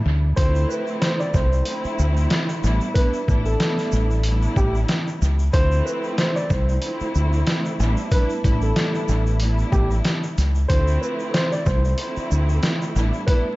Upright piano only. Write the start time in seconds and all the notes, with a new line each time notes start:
0.36 C5
0.69 B4
1.01 C5
1.20 D5
1.35 C5
2.94 B4
3.46 A4
4.57 G4
5.53 C5
5.85 B4
6.18 C5
6.36 D5
6.51 C5
8.12 B4
8.62 A4
9.72 G4
10.68 C5
11.01 B4
11.34 C5
11.52 D5
11.67 C5
13.27 B4